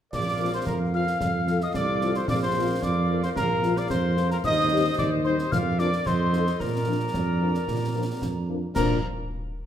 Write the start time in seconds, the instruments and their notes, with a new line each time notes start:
0.12 tuba A#1, woodwind section A#4 F5, cornet D5, piccolo D6, concert bass drum, snare, crash
0.40 french horn section F3 F4 A#4
0.54 cornet C5, piccolo C6
0.67 tuba F2, cornet A#4, piccolo A#5, concert bass drum, snare
0.94 french horn section F3 F4 A#4, cornet F5, piccolo F6
1.07 snare
1.20 tuba F2, woodwind section A4, concert bass drum, snare
1.47 french horn section F3 F4 A4, snare
1.61 cornet D#5, piccolo D#6, snare
1.74 tuba C2, cornet D5, piccolo D6, concert bass drum, snare
2.01 french horn section F3 F4 A4, snare
2.15 cornet C5, piccolo C6, snare
2.28 tuba A#1, woodwind section A#4 F5, cornet D5, piccolo D6, concert bass drum, snare
2.43 cornet C5, piccolo C6
2.56 french horn section F3 F4 A#4
2.82 tuba F2, cornet D5, piccolo D6, concert bass drum, snare
3.10 french horn section F3 F4 A#4
3.23 cornet C5, piccolo C6, snare
3.36 tuba A#1, cornet A#4, piccolo A#5, concert bass drum, snare
3.63 french horn section F3 F4 A#4, snare
3.77 cornet D5, piccolo D6, snare
3.90 tuba F2, cornet C5, piccolo C6, concert bass drum, snare
4.17 french horn section F3 F4 A#4, snare
4.31 cornet A#4, piccolo A#5, snare
4.44 tuba D#2, woodwind section C5 D#5, cornet D#5, piccolo D#6, concert bass drum, snare, crash
4.71 french horn section G3 D#4 C5
4.98 tuba D#2, cornet D5, piccolo D6, concert bass drum, snare
5.25 french horn section G3 D#4 C5, cornet C5, piccolo C6
5.39 snare
5.52 tuba F2, woodwind section A#4 D5, cornet F5, piccolo F6, concert bass drum, snare
5.78 french horn section F3 D4 A#4, cornet D5, piccolo D6, snare
5.93 snare
6.06 tuba F2, woodwind section A4 D#5, cornet C5, piccolo C6, concert bass drum, snare
6.32 french horn section F3 D#4 A4, snare
6.47 snare
6.60 tuba A#2, cornet A#4, woodwind section A#4 D5, piccolo A#5, concert bass drum, snare
6.87 french horn section F3 D4 A#4
7.14 tuba F2, concert bass drum, snare
7.41 french horn section F3 D4 A#4
7.55 snare
7.68 tuba A#2, concert bass drum, snare
7.94 french horn section F3 D4 A#4
8.22 tuba F2, concert bass drum, snare
8.49 french horn section F3 D4 A#4
8.75 tuba A#2, french horn section F3 D4 A#4, cornet A#4, woodwind section A#4 D5, piccolo A#5, concert bass drum, snare, crash